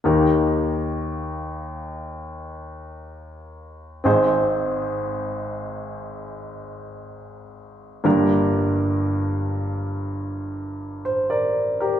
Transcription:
0.04 D#2 D#3 A#3 D#4 G4 A#4
4.04 G#1 G#2 C4 D#4 G#4 C5
8.04 G1 G2 A#3 D4 G4 A#4
11.05 C5
11.30 A#4 D5
11.80 G4 A#4

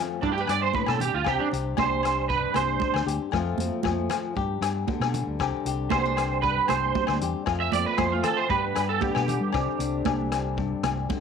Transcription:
Already playing: F2 F3 A3 C4 F4
0.20 G2 G3 B3 D4 E4, kick, muted conga
0.32 G4
0.38 G4 B4
0.47 G2 D4 D5, cross-stick, closed hi-hat, low agogo
0.62 C5
0.73 A2 B4, kick, high conga
0.86 B2 A4, cross-stick, low agogo
1.00 G4, closed hi-hat, muted conga, low conga
1.14 D2 F4
1.24 C2 C3 G3 C4 D4 G4, kick, cross-stick, muted conga, low agogo
1.40 D4
1.52 C2 G4, closed hi-hat, muted conga
1.77 C2 G3 D4 C5, kick, cross-stick, high conga, low agogo
2.03 cross-stick, closed hi-hat, low agogo
2.29 G2 B4, kick, muted conga
2.54 C2 C5, cross-stick, closed hi-hat, high conga, low agogo
2.80 muted nylon-string guitar stroke, kick, high conga
2.94 D2, cross-stick, low agogo
3.06 D2 G4, closed hi-hat, muted conga
3.31 F2 F3 A3 C4 F4, kick, cross-stick, muted conga, low agogo
3.35 F4
3.57 F2 C4, closed hi-hat, muted conga, high conga
3.83 F2 F3 A3, kick, cross-stick, high conga, low agogo
4.10 cross-stick, closed hi-hat, low conga, low agogo
4.35 G2 G3 B3 D4 G4, kick, muted conga
4.61 G2 D4, cross-stick, closed hi-hat, low agogo
4.87 D3, muted nylon-string guitar stroke, kick, high conga
5.00 B2, cross-stick, low agogo
5.14 closed hi-hat, muted conga, low conga
5.27 D2
5.38 C2 C3 C4 G4, kick, cross-stick, muted conga, low agogo
5.65 C2 G4, closed hi-hat, muted conga
5.90 C2 G3 B3 C5, kick, cross-stick, high conga, low agogo
6.05 D4
6.17 cross-stick, closed hi-hat, low agogo
6.42 G2 B4, kick, muted conga
6.68 C2 C5, cross-stick, closed hi-hat, high conga, low agogo
6.95 G3, kick, high conga
7.07 D2, cross-stick, low agogo
7.21 E2 G4, closed hi-hat, muted conga
7.45 F2 A3 F4, kick, cross-stick, muted conga, low agogo
7.60 E5
7.72 F2 C4 D5, closed hi-hat, muted conga, high conga
7.86 B4
7.98 F2 F3 A3 C5, kick, cross-stick, high conga, low agogo
8.12 F4
8.24 A4, cross-stick, closed hi-hat, low conga, low agogo
8.37 C5
8.49 G2 G3 B3 D4 G4 B4, kick, muted conga
8.76 G2 D4, cross-stick, closed hi-hat, low agogo
8.89 A4
9.01 D3 B3 G4, kick, high conga
9.15 B2, cross-stick, low agogo
9.28 closed hi-hat, muted conga, low conga
9.41 G3
9.53 C2 C3 C4 D4, kick, cross-stick, muted conga, low agogo
9.79 C2 D4, closed hi-hat, muted conga
10.05 C2 G3 D4, kick, cross-stick, high conga, low agogo
10.32 cross-stick, closed hi-hat, low agogo
10.57 G2, kick, muted conga
10.83 C2, cross-stick, closed hi-hat, high conga, low agogo
11.09 D3, kick, high conga

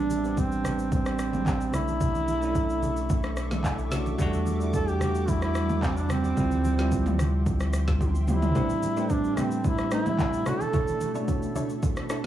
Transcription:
Already playing: A1 G3 B3 C4 D4 G4 D5 A5 B5
0.10 high conga, shaker
0.24 G3 B3 C4 D4, shaker
0.37 C4, kick, shaker
0.52 shaker
0.64 G3 C4 D4 B4, cross-stick, high conga, low conga, shaker
0.79 shaker
0.92 C4, kick, shaker
1.06 cross-stick, shaker
1.19 cross-stick, shaker
1.33 mid tom, high conga, shaker
1.46 kick, clap, shaker
1.61 shaker
1.73 B1 A3 C#4 D4 E4 A4 E5 C#6 D6, cross-stick, low conga, shaker
1.88 high conga, shaker
2.01 kick, low conga, shaker
2.15 high conga, shaker
2.28 high conga, shaker
2.41 A3 C#4 D4 E4, shaker
2.55 kick, shaker
2.70 shaker
2.83 high conga, low conga, shaker
2.97 shaker
3.10 kick, shaker
3.23 cross-stick, shaker
3.37 cross-stick, shaker
3.51 snare, mid tom, high conga, shaker
3.64 kick, clap, shaker
3.79 shaker
3.91 A3 C#4 D4 F#4, snare, low conga, shaker
4.06 high conga, shaker
4.18 E2 G3 A3 D4 F#4 F#5 A5, kick, low conga, shaker
4.33 high conga, shaker
4.46 high conga, shaker
4.60 G3 A3 D4 E4, shaker
4.74 A4, kick, shaker
4.88 G4, shaker
5.00 G3 A3 D4 F#4, cross-stick, high conga, low conga, shaker
5.15 shaker
5.28 E4, kick, shaker
5.42 E4, cross-stick, shaker
5.55 cross-stick, shaker
5.69 mid tom, high conga, shaker
5.82 C4, kick, clap, shaker
5.97 D4, shaker
6.09 C4, cross-stick, low conga, shaker
6.24 high conga, shaker
6.36 D2 F3 G3 C4 E4 E5 G5 C6, kick, low conga, shaker
6.51 high conga, shaker
6.64 high conga, shaker
6.77 F3 G3 C4 E4, snare, shaker
6.92 kick, shaker
7.06 mid tom, shaker
7.19 cross-stick, high conga, low conga, shaker
7.46 kick, shaker
7.60 cross-stick, shaker
7.73 cross-stick, shaker
7.88 kick, snare, high conga, shaker
8.01 kick, high tom, shaker
8.15 shaker
8.27 F3 G3 C4 E4 G4, mid tom, low conga, shaker
8.42 floor tom, high conga, shaker
8.54 A2 G3 A3 B3 C4 D4 G4 B4 C5 D5 A5 B5, kick, low conga, shaker
8.70 high conga, shaker
8.83 high conga, shaker
8.96 A2 G3 A3 C4 D4 G4 B4 C5, shaker
9.10 D4, kick, shaker
9.24 shaker
9.37 A2 G3 A3 B3 C4 D4 E4 G4 B4 C5, cross-stick, high conga, low conga, shaker
9.51 shaker
9.64 E4, kick, shaker
9.78 cross-stick, shaker
9.91 A3 D4 E4 G4 B4 C5, cross-stick, shaker
10.06 mid tom, high conga, shaker
10.19 kick, clap, shaker
10.33 shaker
10.46 B2 A3 B3 C#4 D4 E4 F#4 A4 C#5 E5 C#6, cross-stick, low conga, shaker
10.61 A4, high conga, shaker
10.73 D4 E4 A4 C#5, kick, low conga, shaker
10.88 high conga, shaker
11.01 high conga, shaker
11.14 B2 A3 C#4 D4 E4 A4 C#5, shaker
11.24 F#4, kick, shaker
11.42 shaker
11.55 D4 E4 A4 C#5, high conga, low conga, shaker
11.69 shaker
11.83 kick, shaker
11.96 cross-stick, shaker
12.09 D4 E4 A4 C#5 A5, cross-stick, shaker

